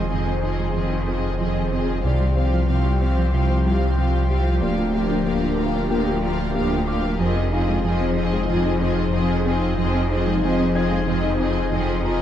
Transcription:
Already playing: sub bass F1, analog synth pad D#3 C4 G#4 C5, viola section C4, violin section G#4 D#5
0.11 cello section F2, synth arpeggio sound F3, viola section C4 F4, violin section G#4 D#5
0.27 synth arpeggio sound C4
0.43 viola section C4 F4, synth arpeggio sound D#4, violin section G#4 D#5
0.60 synth arpeggio sound G#3
0.76 cello section F2, synth arpeggio sound F3, viola section C4 F4, violin section G#4 D#5
0.92 synth arpeggio sound D#4
1.08 synth arpeggio sound C4, viola section C4 F4, violin section G#4 D#5
1.40 cello section F2, synth arpeggio sound F3, viola section C4 F4, violin section G#4 D#5
1.72 synth arpeggio sound C4, viola section C4 F4, violin section G#4 D#5
2.03 sub bass C2, cello section C2, synth arpeggio sound C3, analog synth pad F3 C4 G4 C5, viola section C4 F4, grand piano D4 D5, violin section G4 F5
2.21 synth arpeggio sound G3
2.36 viola section C4 F4, synth arpeggio sound C4, violin section G4 F5
2.54 synth arpeggio sound F3
2.69 cello section C2, synth arpeggio sound C3, viola section C4 F4, violin section G4 F5
2.86 synth arpeggio sound G3
3.01 viola section C4 F4, synth arpeggio sound C4, violin section G4 F5
3.18 synth arpeggio sound F3
3.33 cello section C2, synth arpeggio sound C3, viola section C4 F4, grand piano F4 F5, violin section G4 F5
3.50 synth arpeggio sound C4
3.66 synth arpeggio sound G3, viola section C4 F4, violin section G4 F5
3.98 cello section C2, synth arpeggio sound C3, viola section C4 F4, violin section G4 F5
4.30 synth arpeggio sound G3, viola section C4 F4, violin section G4 F5
4.60 sub bass D1, cello section D2, viola section A#3 F4, synth arpeggio sound A#3, analog synth pad D4 A#4, violin section G4 F5, grand piano D5
4.78 synth arpeggio sound F4
4.94 viola section A#3 F4, synth arpeggio sound G4, violin section G4 F5
5.11 synth arpeggio sound D4
5.26 cello section D2, viola section A#3 F4, synth arpeggio sound A#3, violin section G4 F5
5.43 synth arpeggio sound F4
5.59 viola section A#3 F4, violin section G4 F5, synth arpeggio sound G4
5.75 synth arpeggio sound D4
5.90 cello section D2, viola section A#3 F4, synth arpeggio sound A#3, grand piano F4 G5, violin section G4 F5
6.07 synth arpeggio sound G4
6.24 viola section A#3 F4, synth arpeggio sound F4, violin section G4 F5
6.55 cello section D2, viola section A#3 F4, synth arpeggio sound A#3, violin section G4 F5
6.87 viola section A#3 F4, synth arpeggio sound F4, violin section G4 F5, grand piano D6
7.19 sub bass F1, cello section F2, analog synth pad F3 D#4 G#4 C5, synth arpeggio sound F3, viola section C4 F4, violin section G#4 D#5
7.36 synth arpeggio sound C4
7.51 viola section C4 F4, synth arpeggio sound D#4, violin section G#4 D#5, grand piano F5
7.68 synth arpeggio sound G#3
7.85 cello section F2, synth arpeggio sound F3, viola section C4 F4, violin section G#4 D#5
8.01 synth arpeggio sound C4
8.17 viola section C4 F4, synth arpeggio sound D#4, violin section G#4 D#5
8.33 synth arpeggio sound G#3
8.49 cello section F2, synth arpeggio sound F3, viola section C4 F4, violin section G#4 D#5
8.65 synth arpeggio sound D#4
8.81 viola section C4 F4, synth arpeggio sound C4, violin section G#4 D#5
9.13 cello section F2, synth arpeggio sound F3, viola section C4 F4, violin section G#4 D#5
9.46 viola section C4 F4, synth arpeggio sound C4, violin section G#4 D#5
9.78 cello section F2, synth arpeggio sound F3, viola section C4 F4, violin section G#4 D#5
9.95 synth arpeggio sound C4
10.10 viola section C4 F4, synth arpeggio sound D#4, violin section G#4 D#5
10.27 synth arpeggio sound G#3
10.42 cello section F2, synth arpeggio sound F3, viola section C4 F4, violin section G#4 D#5
10.59 synth arpeggio sound C4
10.75 viola section C4 F4, synth arpeggio sound D#4, grand piano F4 G#6, violin section G#4 D#5
10.92 synth arpeggio sound G#3
11.07 cello section F2, synth arpeggio sound F3, viola section C4 F4, violin section G#4 D#5
11.24 synth arpeggio sound D#4
11.39 viola section C4 F4, synth arpeggio sound C4, violin section G#4 D#5
11.72 cello section F2, synth arpeggio sound F3, viola section C4 F4, violin section G#4 D#5
12.04 viola section C4 F4, synth arpeggio sound C4, violin section G#4 D#5, grand piano A#5

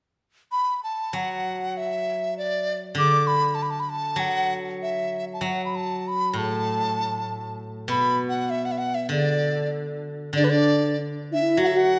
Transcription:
0.52 dizi B5
0.84 dizi A5
1.13 guzheng F#3, dizi F#5
1.77 dizi E5
2.38 dizi D5
2.95 guzheng D3, dizi D6
3.27 dizi B5
3.55 dizi A5
3.63 dizi B5
3.71 dizi A5
3.80 dizi B5
3.89 dizi A5
4.16 guzheng F#3, dizi F#5
4.82 dizi E5
5.34 dizi A5
5.41 guzheng F#3, dizi F#5
5.65 dizi B5
5.76 dizi A5
6.08 dizi B5
6.33 guzheng A2
6.38 dizi A5
7.88 guzheng B2, dizi B5
8.29 dizi F#5
8.50 dizi E5
8.65 dizi F#5
8.72 dizi E5
8.78 dizi F#5
8.95 dizi E5
9.09 guzheng D3, dizi D5
10.33 guzheng D3, dizi D5
10.37 xiao D4
10.44 dizi B4
10.50 xiao D4, dizi D5
11.31 xiao D4 E4, dizi E5
11.42 xiao E4
11.57 guzheng F#3, xiao F#4
11.63 dizi E5 F#5
11.73 xiao F#4, dizi F#5

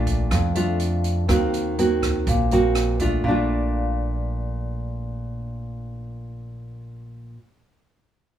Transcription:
Already playing: upright bass A#1, nylon-string guitar A#2 A3 D4 F4
0.07 kick, closed hi-hat
0.31 upright bass F2, nylon-string guitar F2, kick, cross-stick, closed hi-hat
0.55 nylon-string guitar A3 D4 F4, closed hi-hat
0.80 closed hi-hat
1.04 closed hi-hat
1.28 upright bass D#2, nylon-string guitar D#3 A#3 C4 F#4, kick, cross-stick, closed hi-hat
1.54 closed hi-hat
1.79 nylon-string guitar A#3 C4 F#4, closed hi-hat
2.02 kick, cross-stick, closed hi-hat
2.27 upright bass A#1, nylon-string guitar A#2, kick, closed hi-hat
2.51 nylon-string guitar A#3 C4 F#4, closed hi-hat
2.75 cross-stick, closed hi-hat
2.99 nylon-string guitar A3 D4 F4, kick, closed hi-hat
3.24 upright bass A#1, nylon-string guitar A#2 A3
3.28 nylon-string guitar D4 F4

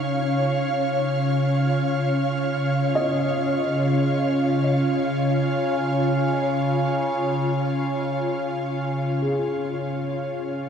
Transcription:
Already playing: ambient pad C#3 C#4 F4 C#5 F5, felt piano C#5
0.09 synth drone C#3 C#4
2.95 felt piano D#5
9.22 felt piano G#4

